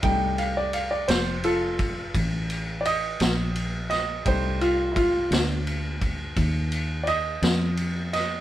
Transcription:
<<
  \new Staff \with { instrumentName = "Upright piano" } { \time 12/8 \key f \mixolydian \tempo 4. = 57 g''8 f''16 d''16 f''16 d''16 c''8 <f' a'>4 r4 <d'' ees''>4. ees''8 | c''8 f'8 <e' f'>8 r2 r8 <d'' ees''>4. ees''8 | }
  \new Staff \with { instrumentName = "Upright piano" } { \time 12/8 \key f \mixolydian <g a ees'>1. | <g a ees'>4. r1 r8 | }
  \new Staff \with { instrumentName = "Fingered electric bass" } { \clef bass \time 12/8 \key f \mixolydian c,4. f,,4. a,,4. bes,,4. | c,4. d,4. ees,4. f,4. | }
  \new DrumStaff \with { instrumentName = "Drums" } \drummode { \time 12/8 <bd cymr>8 cymr8 cymr8 <cymr sn>8 cymr8 <bd cymr>8 <bd cymr>8 cymr8 cymr8 <cymr sn>8 cymr8 <cymr sn>8 | <bd cymr>8 cymr8 <bd cymr>8 <cymr sn>8 cymr8 <bd cymr>8 <bd cymr>8 cymr8 cymr8 <cymr sn>8 cymr8 <cymr sn>8 | }
>>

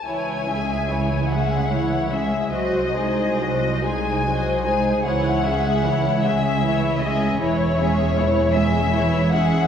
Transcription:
<<
  \new Staff \with { instrumentName = "Violin section" } { \time 6/8 \key cis \minor \tempo 4. = 50 gis''4. fis''4 e''8 | dis''4. gis''4 gis''8 | fis''4. e''4 dis''8 | cis''4. e''4 fis''8 | }
  \new Staff \with { instrumentName = "Violin section" } { \time 6/8 \key cis \minor <e' cis''>8 <gis' e''>8 <e' cis''>8 <gis' e''>8 <e' cis''>8 <gis' e''>8 | <bis' dis''>8 <gis' bis'>8 <bis' dis''>8 <gis' bis'>8 <bis' dis''>8 <gis' bis'>8 | <e' cis''>8 <gis' e''>8 <e' cis''>8 <gis' e''>8 <e' cis''>8 <gis' e''>8 | <e' cis''>8 <gis' e''>8 <e' cis''>8 <gis' e''>8 <e' cis''>8 <gis' e''>8 | }
  \new Staff \with { instrumentName = "Viola section" } { \time 6/8 \key cis \minor <e e'>8 <gis cis'>8 <e e'>8 <gis cis'>8 <e e'>8 <gis cis'>8 | <fis fis'>8 <gis dis'>8 <fis fis'>8 <gis dis'>8 <fis fis'>8 <gis dis'>8 | <e e'>8 <gis cis'>8 <e e'>8 <gis cis'>8 <e e'>8 <gis cis'>8 | <e e'>8 <gis cis'>8 <e e'>8 <gis cis'>8 <e e'>8 <gis cis'>8 | }
  \new Staff \with { instrumentName = "Cello section" } { \clef bass \time 6/8 \key cis \minor cis,2. | bis,,2. | cis,2. | e,2. | }
  \new Staff \with { instrumentName = "Double bass section" } { \clef bass \time 6/8 \key cis \minor cis,2. | bis,,2. | cis,2. | e,,2. | }
>>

